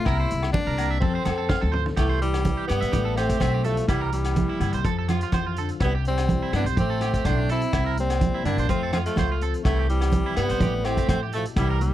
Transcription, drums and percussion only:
0.05 kick medium
0.05 cross-stick medium
0.05 muted conga soft
0.05 low agogo medium
0.30 closed hi-hat medium
0.30 muted conga soft
0.42 cross-stick medium
0.42 low agogo medium
0.54 kick medium
0.54 high conga medium
0.78 closed hi-hat medium
0.78 muted conga soft
0.78 low agogo medium
1.02 kick medium
1.02 muted conga soft
1.25 cross-stick medium
1.25 closed hi-hat soft
1.25 high conga medium
1.25 low agogo medium
1.49 kick medium
1.49 snare soft
1.49 high conga medium
1.49 low agogo medium
1.62 high tom soft
1.73 mid tom medium
1.86 floor tom medium
1.97 kick medium
1.97 cross-stick medium
1.97 closed hi-hat soft
1.97 muted conga soft
1.97 low agogo medium
2.22 closed hi-hat soft
2.34 cross-stick medium
2.34 closed hi-hat soft
2.34 low agogo medium
2.45 kick medium
2.45 closed hi-hat soft
2.45 high conga medium
2.69 cross-stick medium
2.69 closed hi-hat soft
2.69 muted conga soft
2.69 low agogo medium
2.82 closed hi-hat soft
2.93 kick medium
2.93 closed hi-hat soft
2.93 muted conga soft
2.93 high conga medium
3.17 cross-stick medium
3.17 closed hi-hat soft
3.17 muted conga soft
3.17 low agogo medium
3.29 kick medium
3.29 closed hi-hat soft
3.40 kick medium
3.40 cross-stick medium
3.40 closed hi-hat soft
3.40 high conga medium
3.40 low agogo medium
3.64 closed hi-hat soft
3.77 closed hi-hat soft
3.88 kick medium
3.88 cross-stick medium
3.88 closed hi-hat soft
3.88 muted conga soft
3.88 low agogo medium
4.12 closed hi-hat soft
4.24 cross-stick medium
4.24 closed hi-hat soft
4.24 low agogo medium
4.36 kick medium
4.36 closed hi-hat soft
4.36 high conga medium
4.60 closed hi-hat soft
4.60 low conga medium
4.60 low agogo medium
4.73 closed hi-hat soft
4.85 kick medium
4.85 closed hi-hat soft
4.85 muted conga soft
5.08 cross-stick medium
5.08 closed hi-hat soft
5.08 muted conga soft
5.08 high conga medium
5.08 low agogo medium
5.21 closed hi-hat soft
5.32 kick medium
5.32 cross-stick medium
5.32 closed hi-hat soft
5.32 high conga medium
5.32 low agogo medium
5.56 closed hi-hat soft
5.69 closed hi-hat soft
5.80 kick medium
5.80 cross-stick medium
5.80 closed hi-hat soft
5.80 muted conga soft
5.80 low agogo medium
6.05 closed hi-hat soft
6.17 cross-stick medium
6.17 closed hi-hat soft
6.17 low agogo medium
6.29 kick medium
6.29 closed hi-hat soft
6.29 high conga medium
6.52 cross-stick medium
6.52 closed hi-hat soft
6.52 muted conga soft
6.52 low agogo medium
6.66 closed hi-hat soft
6.77 kick medium
6.77 closed hi-hat soft
6.77 muted conga soft
6.77 high conga medium
7.01 cross-stick medium
7.01 closed hi-hat soft
7.01 muted conga soft
7.01 low agogo medium
7.14 kick medium
7.14 closed hi-hat soft
7.25 kick medium
7.25 cross-stick medium
7.25 closed hi-hat soft
7.25 high conga medium
7.25 low agogo medium
7.49 closed hi-hat soft
7.61 closed hi-hat soft
7.73 kick medium
7.73 cross-stick medium
7.73 closed hi-hat soft
7.73 muted conga soft
7.73 low agogo medium
7.97 closed hi-hat soft
8.10 cross-stick medium
8.10 closed hi-hat soft
8.10 low agogo medium
8.21 kick medium
8.21 closed hi-hat soft
8.21 high conga medium
8.45 closed hi-hat soft
8.45 muted conga soft
8.45 low conga medium
8.45 low agogo medium
8.58 closed hi-hat soft
8.69 kick medium
8.69 closed hi-hat soft
8.93 cross-stick medium
8.93 closed hi-hat soft
8.93 muted conga soft
8.93 high conga medium
8.93 low agogo medium
9.06 closed hi-hat soft
9.16 kick medium
9.16 cross-stick medium
9.16 closed hi-hat soft
9.16 high conga medium
9.16 low agogo medium
9.41 closed hi-hat soft
9.54 closed hi-hat soft
9.65 kick medium
9.65 cross-stick medium
9.65 closed hi-hat soft
9.65 muted conga soft
9.65 low agogo medium
9.89 closed hi-hat soft
10.01 cross-stick medium
10.01 closed hi-hat soft
10.01 low agogo medium
10.12 kick medium
10.12 closed hi-hat soft
10.12 high conga medium
10.36 cross-stick medium
10.36 closed hi-hat soft
10.36 low agogo medium
10.49 closed hi-hat soft
10.61 kick medium
10.61 closed hi-hat soft
10.61 muted conga soft
10.61 high conga medium
10.84 cross-stick medium
10.84 closed hi-hat soft
10.84 low agogo medium
10.97 kick medium
10.97 closed hi-hat soft
11.09 kick medium
11.09 cross-stick medium
11.09 closed hi-hat soft
11.09 high conga medium
11.09 low agogo medium
11.32 closed hi-hat soft
11.45 closed hi-hat soft
11.56 kick medium
11.56 cross-stick medium
11.56 closed hi-hat soft
11.56 muted conga soft
11.56 low agogo medium
11.81 closed hi-hat soft

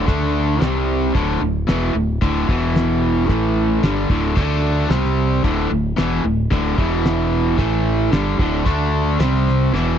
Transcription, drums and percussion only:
0.08 kick loud
0.08 closed hi-hat medium
0.61 snare loud
0.61 closed hi-hat medium
1.15 kick medium
1.15 closed hi-hat medium
1.68 snare loud
1.68 closed hi-hat medium
2.22 kick loud
2.22 closed hi-hat medium
2.49 kick loud
2.76 snare loud
2.76 closed hi-hat medium
3.29 kick medium
3.29 closed hi-hat soft
3.83 snare loud
3.83 closed hi-hat medium
4.10 kick loud
4.37 kick loud
4.37 closed hi-hat medium
4.90 snare loud
4.90 closed hi-hat medium
5.04 snare soft
5.44 kick medium
5.44 closed hi-hat medium
5.98 snare medium
5.98 closed hi-hat medium
6.52 kick loud
6.52 closed hi-hat medium
6.78 kick medium
7.05 snare loud
7.05 closed hi-hat medium
7.59 kick medium
7.59 closed hi-hat medium
8.13 snare loud
8.13 closed hi-hat medium
8.39 kick loud
8.66 kick loud
8.66 closed hi-hat medium
9.20 snare loud
9.20 closed hi-hat medium
9.35 snare soft
9.48 snare soft
9.75 snare soft

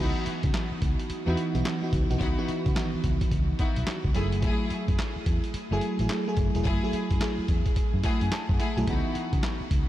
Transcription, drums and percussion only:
0.26 closed hi-hat medium
0.43 kick medium
0.43 closed hi-hat medium
0.54 snare loud
0.54 clap medium
0.54 closed hi-hat medium
0.82 kick medium
0.82 closed hi-hat medium
0.99 closed hi-hat medium
1.10 closed hi-hat medium
1.37 closed hi-hat medium
1.55 closed hi-hat soft
1.65 snare loud
1.65 clap medium
1.65 closed hi-hat medium
1.93 kick loud
1.93 closed hi-hat medium
2.11 closed hi-hat soft
2.21 kick loud
2.21 closed hi-hat medium
2.48 closed hi-hat medium
2.66 kick medium
2.66 closed hi-hat medium
2.76 snare loud
2.76 clap medium
2.76 closed hi-hat medium
3.04 kick medium
3.04 closed hi-hat medium
3.21 kick medium
3.21 closed hi-hat medium
3.31 kick loud
3.31 closed hi-hat medium
3.59 kick medium
3.59 closed hi-hat medium
3.76 closed hi-hat medium
3.87 snare loud
3.87 clap medium
3.87 closed hi-hat medium
4.04 kick medium
4.15 closed hi-hat medium
4.32 closed hi-hat medium
4.42 kick loud
4.42 closed hi-hat medium
4.70 closed hi-hat medium
4.88 kick medium
4.88 closed hi-hat soft
4.99 snare loud
4.99 clap medium
4.99 closed hi-hat medium
5.26 kick medium
5.26 closed hi-hat medium
5.44 closed hi-hat medium
5.54 closed hi-hat medium
5.81 closed hi-hat medium
5.99 closed hi-hat soft
6.09 snare loud
6.09 clap medium
6.09 closed hi-hat medium
6.37 kick medium
6.37 closed hi-hat medium
6.55 closed hi-hat medium
6.65 kick loud
6.65 closed hi-hat medium
6.93 closed hi-hat medium
7.11 kick medium
7.11 closed hi-hat medium
7.21 snare loud
7.21 clap medium
7.21 closed hi-hat medium
7.48 kick medium
7.48 closed hi-hat medium
7.66 kick loud
7.66 closed hi-hat soft
7.76 kick loud
7.76 closed hi-hat medium
8.04 kick medium
8.04 snare medium
8.04 closed hi-hat medium
8.21 closed hi-hat medium
8.32 snare loud
8.32 clap medium
8.32 closed hi-hat medium
8.49 kick medium
8.60 closed hi-hat medium
8.78 closed hi-hat medium
8.87 kick loud
8.87 closed hi-hat medium
9.15 closed hi-hat medium
9.33 kick medium
9.33 closed hi-hat soft
9.43 snare loud
9.43 clap medium
9.43 closed hi-hat medium
9.71 kick medium
9.71 closed hi-hat medium

